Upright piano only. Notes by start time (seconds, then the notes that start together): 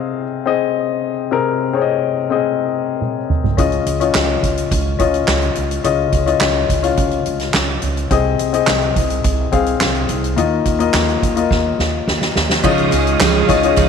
Already playing: C3 C4 G#4 D#5 F5
0.46 C4 G#4 D#5
1.31 C3 C4 G#4 A#4
1.73 C4 G#4 C#5
1.82 D#5
2.30 C4 G#4 D#5
3.57 C#3 C#4 F4 D#5
4.00 C#4 F4 D#5
4.99 C#4 F4 D#5
5.84 C#3 C#4 F4 D#5
6.26 C#4 F4 D#5
6.82 C#4 F4 F5
8.11 C3 C4 G#4 D#5
8.53 C4 G#4 D#5
9.52 C4 G#4 F5
10.36 D#3 A#3 F4 D#5
10.79 A#3 F4 D#5
11.36 A#3 F4 D#5
12.63 C#3 C#4 F4 D#5
13.48 C#4 F4 D#5
13.62 C#4 F4 D#5